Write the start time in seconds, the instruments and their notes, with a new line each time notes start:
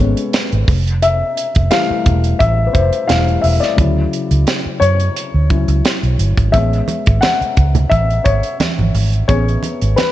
Already playing: grand piano G#4 A4 B4 C#5
0.00 fingered electric bass G#1, grand piano G#3 B3 C#4
0.17 closed hi-hat
0.33 snare, closed hi-hat
0.52 fingered electric bass G#1, closed hi-hat
0.68 fingered electric bass F1, kick, open hi-hat
0.87 closed hi-hat
1.02 grand piano E5, closed hi-hat
1.37 closed hi-hat
1.55 fingered electric bass F1, kick, closed hi-hat
1.71 grand piano E3 G3 A3 F5, snare, closed hi-hat
1.90 muted fingered electric bass stroke
2.06 fingered electric bass E1, kick, closed hi-hat
2.24 closed hi-hat
2.39 fingered electric bass A1, grand piano E5, kick, closed hi-hat
2.67 grand piano B4
2.73 fingered electric bass F1, grand piano C5, kick, closed hi-hat
2.93 closed hi-hat
3.07 fingered electric bass E1, grand piano E3 G3 A3 F5, snare, closed hi-hat
3.28 closed hi-hat
3.42 fingered electric bass E1, grand piano E5, open hi-hat
3.60 grand piano D5, snare, closed hi-hat
3.77 fingered electric bass D2, grand piano C#3 F#3 E4, kick, closed hi-hat
4.13 closed hi-hat
4.31 fingered electric bass C#2, closed hi-hat
4.47 snare, closed hi-hat
4.66 muted fingered electric bass stroke
4.80 fingered electric bass F#2, grand piano C#5, closed hi-hat
5.00 closed hi-hat
5.17 closed hi-hat
5.34 fingered electric bass D2
5.50 fingered electric bass C#2, grand piano F#3 C#4 E4, kick, closed hi-hat
5.68 fingered electric bass C#2, closed hi-hat
5.85 snare, closed hi-hat
6.03 fingered electric bass B1, closed hi-hat
6.19 fingered electric bass G1, closed hi-hat
6.38 fingered electric bass G#1, kick, closed hi-hat
6.52 fingered electric bass A1, grand piano G#3 B3 C#4 E5, kick, closed hi-hat
6.73 closed hi-hat
6.88 closed hi-hat, muted conga
7.06 fingered electric bass G#1, kick, closed hi-hat
7.21 grand piano F#5, snare, closed hi-hat, high conga
7.41 muted fingered electric bass stroke, closed hi-hat
7.57 fingered electric bass C#2, kick, closed hi-hat
7.75 closed hi-hat, low conga
7.90 fingered electric bass A1, grand piano E5, kick, closed hi-hat, muted conga
8.10 closed hi-hat
8.24 fingered electric bass G#1, grand piano C#5, kick, closed hi-hat
8.43 closed hi-hat
8.60 snare, closed hi-hat, high conga
8.79 fingered electric bass G#1, high conga
8.94 fingered electric bass G#1, open hi-hat
9.13 closed hi-hat
9.28 fingered electric bass A1, grand piano B3 C#4 G#4 C#5, kick, closed hi-hat, muted conga
9.48 closed hi-hat
9.63 closed hi-hat, muted conga
9.81 fingered electric bass G#1, closed hi-hat
9.96 grand piano B4, snare, closed hi-hat, high conga